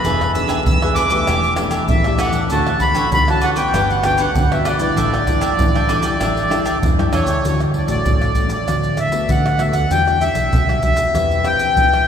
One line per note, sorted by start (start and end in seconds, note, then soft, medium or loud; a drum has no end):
0.00 0.31 B3 medium
0.00 0.31 D4 medium
0.00 0.19 D4 medium
0.00 0.31 G#4 medium
0.00 0.32 B5 medium
0.04 0.68 E1 loud
0.04 0.64 E3 medium
0.04 0.19 G#4 medium
0.04 0.19 B4 medium
0.04 0.19 E5 medium
0.04 pandeiro medium
0.04 maracas medium
0.04 surdo medium
0.20 0.47 G#4 soft
0.20 0.47 B4 soft
0.20 0.47 E5 soft
0.20 pandeiro soft
0.20 tamborim medium
0.20 maracas soft
0.34 0.65 B3 medium
0.34 0.65 D4 medium
0.34 0.65 G#4 medium
0.34 0.64 E6 loud
0.34 pandeiro medium
0.34 maracas medium
0.48 0.58 D4 medium
0.48 0.59 G#4 medium
0.48 0.59 B4 medium
0.48 0.59 E5 medium
0.48 pandeiro medium
0.48 low agogo medium
0.48 maracas medium
0.66 1.19 E2 loud
0.66 0.95 E6 loud
0.66 pandeiro medium
0.66 maracas medium
0.66 surdo loud
0.82 1.09 B3 medium
0.82 1.09 D4 medium
0.82 0.96 G#4 soft
0.82 1.09 G#4 medium
0.82 0.96 B4 soft
0.82 0.96 E5 medium
0.82 pandeiro soft
0.82 tamborim medium
0.82 maracas soft
0.95 1.11 D4 medium
0.95 1.12 G#4 medium
0.95 1.11 B4 medium
0.95 1.10 E5 medium
0.95 1.54 D6 loud
0.95 pandeiro medium
0.95 high agogo medium
0.95 maracas medium
1.10 1.53 A3 medium
1.10 1.54 D4 medium
1.10 1.54 G4 medium
1.10 1.27 G#4 soft
1.10 1.27 B4 soft
1.10 1.26 E5 medium
1.10 pandeiro medium
1.10 high agogo medium
1.10 maracas medium
1.27 1.80 E1 loud
1.27 1.87 E3 medium
1.27 1.56 G4 medium
1.27 1.57 A4 medium
1.27 1.58 D5 medium
1.27 1.57 E5 medium
1.27 pandeiro medium
1.27 tamborim medium
1.27 low agogo medium
1.27 maracas medium
1.27 surdo medium
1.43 pandeiro soft
1.43 maracas soft
1.56 2.00 A3 medium
1.56 2.00 D4 medium
1.56 1.70 G4 medium
1.56 2.01 G4 medium
1.56 1.71 A4 medium
1.56 1.72 D5 medium
1.56 1.71 E5 soft
1.56 pandeiro medium
1.56 tamborim medium
1.56 low agogo medium
1.56 maracas medium
1.71 1.82 G4 medium
1.71 1.82 A4 medium
1.71 1.83 D5 medium
1.71 1.82 E5 medium
1.71 pandeiro medium
1.71 low agogo medium
1.71 maracas medium
1.88 2.16 A1 medium
1.88 2.49 E3 medium
1.88 2.21 E5 loud
1.88 pandeiro medium
1.88 maracas medium
1.88 surdo loud
2.04 2.47 A3 medium
2.04 2.47 D4 medium
2.04 2.47 G4 medium
2.04 2.18 A4 soft
2.04 2.19 D5 soft
2.04 2.19 E5 soft
2.04 pandeiro soft
2.04 tamborim medium
2.04 maracas soft
2.19 2.34 G4 medium
2.19 2.34 A4 medium
2.19 2.33 D5 medium
2.19 2.33 E5 medium
2.19 2.49 F#5 loud
2.19 pandeiro medium
2.19 tamborim medium
2.19 high agogo medium
2.19 maracas medium
2.33 2.50 A4 soft
2.33 2.49 D5 medium
2.33 pandeiro medium
2.33 maracas medium
2.50 3.04 D2 loud
2.50 3.10 D3 medium
2.50 2.70 A3 medium
2.50 2.70 C#4 medium
2.50 2.66 D4 medium
2.50 2.70 F#4 medium
2.50 2.66 A4 medium
2.50 2.66 C#5 medium
2.50 2.66 F#5 medium
2.50 2.83 A5 medium
2.50 pandeiro medium
2.50 maracas medium
2.50 surdo medium
2.67 2.95 A4 soft
2.67 2.95 C#5 soft
2.67 2.96 F#5 medium
2.67 pandeiro soft
2.67 tamborim medium
2.67 maracas soft
2.80 3.23 A3 medium
2.80 3.24 C#4 medium
2.80 3.24 F#4 medium
2.80 3.10 B5 loud
2.80 pandeiro medium
2.80 maracas medium
2.80 surdo medium
2.95 3.05 D4 medium
2.95 3.06 A4 medium
2.95 3.06 C#5 medium
2.95 3.06 F#5 medium
2.95 pandeiro medium
2.95 low agogo medium
2.95 maracas medium
3.12 3.64 D2 medium
3.12 3.72 A2 medium
3.12 3.29 B5 loud
3.12 pandeiro medium
3.12 maracas medium
3.12 surdo loud
3.28 3.55 A3 medium
3.28 3.55 C#4 medium
3.28 3.55 F#4 medium
3.28 3.42 A4 medium
3.28 3.43 C#5 soft
3.28 3.43 F#5 soft
3.28 3.45 A5 loud
3.28 pandeiro soft
3.28 tamborim medium
3.28 maracas soft
3.41 3.57 D4 medium
3.41 3.57 A4 medium
3.41 3.57 C#5 medium
3.41 3.50 F#5 loud
3.41 3.56 F#5 medium
3.41 pandeiro medium
3.41 high agogo medium
3.41 maracas medium
3.56 3.99 B3 medium
3.56 3.99 D4 medium
3.56 3.73 A4 soft
3.56 3.73 C#5 soft
3.56 3.72 F#5 soft
3.56 3.90 G5 medium
3.56 pandeiro medium
3.56 high agogo medium
3.56 maracas medium
3.74 4.26 G1 loud
3.74 4.33 G3 medium
3.74 4.03 D4 medium
3.74 4.04 G4 medium
3.74 4.04 B4 medium
3.74 4.05 F#5 medium
3.74 pandeiro medium
3.74 tamborim medium
3.74 low agogo medium
3.74 maracas medium
3.74 surdo medium
3.90 4.04 F#5 medium
3.90 pandeiro soft
3.90 maracas soft
4.03 4.46 B3 medium
4.03 4.18 D4 soft
4.03 4.46 D4 medium
4.03 4.46 F#4 medium
4.03 4.18 G4 soft
4.03 4.19 B4 medium
4.03 4.19 F#5 medium
4.03 4.21 G5 loud
4.03 pandeiro medium
4.03 tamborim medium
4.03 low agogo medium
4.03 maracas medium
4.18 4.29 D4 medium
4.18 4.29 G4 medium
4.18 4.29 B4 medium
4.18 4.52 F#5 medium
4.18 4.29 F#5 medium
4.18 pandeiro medium
4.18 low agogo medium
4.18 maracas medium
4.35 4.62 D2 medium
4.35 4.95 D3 medium
4.35 pandeiro medium
4.35 maracas medium
4.35 surdo loud
4.52 4.78 B3 medium
4.52 4.78 D4 medium
4.52 4.78 F#4 medium
4.52 4.65 G4 soft
4.52 4.65 B4 soft
4.52 4.68 E5 medium
4.52 4.66 F#5 soft
4.52 pandeiro soft
4.52 tamborim medium
4.52 maracas soft
4.65 4.80 D4 medium
4.65 4.80 G4 medium
4.65 4.79 B4 medium
4.65 4.80 D5 medium
4.65 4.78 F#5 medium
4.65 pandeiro medium
4.65 tamborim loud
4.65 high agogo medium
4.65 maracas medium
4.79 5.23 G3 medium
4.79 5.23 D4 medium
4.79 5.23 E4 medium
4.79 4.96 G4 soft
4.79 4.96 B4 soft
4.79 6.78 D5 loud
4.79 4.95 F#5 medium
4.79 pandeiro medium
4.79 maracas medium
4.96 5.60 A1 loud
4.96 5.56 A2 medium
4.96 5.11 D4 medium
4.96 5.12 A4 medium
4.96 5.12 E5 medium
4.96 5.12 G5 medium
4.96 pandeiro medium
4.96 maracas medium
4.96 surdo medium
5.13 5.40 A4 soft
5.13 5.40 E5 medium
5.13 5.41 G5 soft
5.13 pandeiro soft
5.13 tamborim medium
5.13 maracas soft
5.27 5.69 G3 medium
5.27 5.69 D4 medium
5.27 5.70 E4 medium
5.27 pandeiro medium
5.27 maracas medium
5.27 surdo medium
5.41 5.51 D4 medium
5.41 5.52 A4 medium
5.41 5.52 E5 medium
5.41 5.52 G5 medium
5.41 pandeiro medium
5.41 low agogo medium
5.41 maracas medium
5.58 6.11 A2 medium
5.58 6.18 E3 medium
5.58 pandeiro medium
5.58 maracas medium
5.58 surdo loud
5.75 6.01 G3 medium
5.75 6.01 D4 medium
5.75 6.01 E4 medium
5.75 5.88 A4 soft
5.75 5.89 E5 medium
5.75 5.89 G5 medium
5.75 pandeiro soft
5.75 tamborim medium
5.75 maracas soft
5.89 6.04 D4 medium
5.89 6.04 A4 medium
5.89 6.04 E5 medium
5.89 6.04 G5 medium
5.89 pandeiro medium
5.89 high agogo medium
5.89 maracas medium
6.03 6.15 G3 medium
6.03 6.15 D4 medium
6.03 6.15 E4 medium
6.03 6.20 A4 soft
6.03 6.20 E5 soft
6.03 6.19 G5 medium
6.03 pandeiro medium
6.03 high agogo medium
6.03 maracas medium
6.19 6.73 A1 loud
6.19 6.79 A2 medium
6.19 6.38 D4 medium
6.19 6.49 D4 medium
6.19 6.39 E4 medium
6.19 6.50 A4 medium
6.19 6.50 E5 medium
6.19 pandeiro medium
6.19 tamborim medium
6.19 low agogo medium
6.19 maracas medium
6.19 surdo medium
6.24 6.51 G5 medium
6.37 pandeiro soft
6.37 maracas soft
6.50 6.80 G3 medium
6.50 6.64 D4 medium
6.50 6.80 D4 medium
6.50 6.80 E4 medium
6.50 6.64 A4 soft
6.50 6.65 E5 medium
6.50 6.65 G5 medium
6.50 pandeiro medium
6.50 tamborim medium
6.50 low agogo medium
6.50 maracas medium
6.66 6.75 D4 medium
6.66 6.75 A4 medium
6.66 6.76 E5 medium
6.66 6.76 G5 medium
6.66 pandeiro medium
6.66 low agogo medium
6.66 maracas medium
6.81 6.96 E2 medium
6.81 7.40 E3 medium
6.81 pandeiro medium
6.81 maracas medium
6.81 surdo loud
6.98 7.12 F#2 medium
6.98 7.39 G3 medium
6.98 7.39 D4 medium
6.98 7.39 E4 medium
6.98 7.12 A4 soft
6.98 7.13 E5 soft
6.98 7.13 G5 soft
6.98 pandeiro soft
6.98 tamborim medium
6.98 maracas soft
7.13 7.26 E2 medium
7.13 7.28 D4 medium
7.13 7.28 A4 medium
7.13 7.46 C#5 medium
7.13 7.28 E5 medium
7.13 7.27 G5 medium
7.13 pandeiro medium
7.13 tamborim medium
7.13 high agogo medium
7.13 maracas medium
7.26 7.41 D2 medium
7.26 7.43 A4 soft
7.26 7.43 E5 medium
7.26 7.43 G5 medium
7.26 pandeiro medium
7.26 maracas medium
7.44 7.84 D2 medium
7.44 8.03 D3 soft
7.44 7.73 A3 soft
7.44 7.74 C#4 soft
7.44 7.74 F#4 medium
7.44 7.61 C#5 medium
7.44 pandeiro medium
7.44 maracas medium
7.44 surdo medium
7.60 pandeiro soft
7.60 tamborim medium
7.60 maracas soft
7.74 7.89 D5 medium
7.74 pandeiro soft
7.88 8.03 A1 medium
7.88 8.31 A3 medium
7.88 8.31 F#4 medium
7.88 8.51 D5 medium
7.88 pandeiro medium
7.88 maracas medium
8.05 8.59 A1 medium
8.05 8.64 A2 medium
8.05 pandeiro medium
8.05 maracas medium
8.05 surdo medium
8.22 pandeiro soft
8.22 tamborim medium
8.22 maracas soft
8.35 8.54 A3 medium
8.35 8.55 C#4 medium
8.35 8.55 F#4 medium
8.35 pandeiro medium
8.35 maracas medium
8.35 surdo medium
8.50 9.00 D5 medium
8.50 pandeiro medium
8.50 maracas medium
8.67 8.94 D2 medium
8.67 9.27 D3 soft
8.67 8.97 A3 medium
8.67 8.97 B3 soft
8.67 8.97 F#4 medium
8.67 pandeiro medium
8.67 tamborim medium
8.67 maracas medium
8.67 surdo soft
8.83 pandeiro soft
8.83 maracas soft
8.97 9.31 E5 medium
8.97 pandeiro medium
8.97 tamborim medium
8.97 maracas medium
9.12 9.54 A3 medium
9.12 9.55 B3 medium
9.12 9.55 F#4 medium
9.12 pandeiro medium
9.12 maracas medium
9.28 9.88 D3 medium
9.28 9.69 D3 medium
9.28 9.62 F#5 medium
9.28 pandeiro medium
9.28 maracas medium
9.28 surdo medium
9.46 pandeiro soft
9.46 tamborim medium
9.46 maracas soft
9.59 9.86 A3 medium
9.59 9.86 B3 medium
9.59 9.86 F#4 medium
9.59 9.75 E5 medium
9.59 pandeiro medium
9.59 tamborim medium
9.59 maracas medium
9.73 9.88 D2 medium
9.73 9.91 F#5 medium
9.73 pandeiro medium
9.73 maracas medium
9.91 10.31 E2 medium
9.91 10.50 E3 soft
9.91 10.00 G3 soft
9.91 10.01 D4 medium
9.91 10.01 F#4 medium
9.91 10.23 G5 loud
9.91 pandeiro medium
9.91 maracas medium
9.91 surdo medium
10.07 10.17 G3 medium
10.07 10.18 D4 medium
10.07 10.18 F#4 medium
10.07 pandeiro soft
10.07 tamborim medium
10.07 maracas soft
10.20 10.51 G3 medium
10.20 10.50 D4 medium
10.20 10.51 F#4 medium
10.20 10.82 E5 loud
10.20 pandeiro medium
10.20 maracas medium
10.35 10.50 B1 medium
10.35 pandeiro medium
10.35 maracas medium
10.53 11.06 B1 medium
10.53 11.12 B2 medium
10.53 pandeiro medium
10.53 maracas medium
10.53 surdo loud
10.69 10.79 G3 medium
10.69 10.79 D4 medium
10.69 10.80 F#4 medium
10.69 pandeiro soft
10.69 tamborim medium
10.69 maracas soft
10.82 11.09 G3 medium
10.82 11.09 D4 medium
10.82 11.10 F#4 medium
10.82 11.48 E5 loud
10.82 pandeiro medium
10.82 maracas medium
10.82 surdo medium
10.97 pandeiro medium
10.97 maracas medium
11.14 11.41 E2 medium
11.14 11.74 E3 medium
11.14 11.41 C4 soft
11.14 11.41 G4 soft
11.14 11.41 B4 medium
11.14 pandeiro medium
11.14 tamborim medium
11.14 maracas medium
11.14 surdo soft
11.31 pandeiro soft
11.31 maracas soft
11.44 11.85 C4 medium
11.44 11.85 G4 medium
11.44 11.85 B4 medium
11.44 12.08 G5 loud
11.44 pandeiro medium
11.44 tamborim medium
11.44 maracas medium
11.59 pandeiro medium
11.59 maracas medium
11.76 12.08 E3 medium
11.76 pandeiro medium
11.76 maracas medium
11.76 surdo loud
11.93 pandeiro soft
11.93 tamborim medium
11.93 maracas soft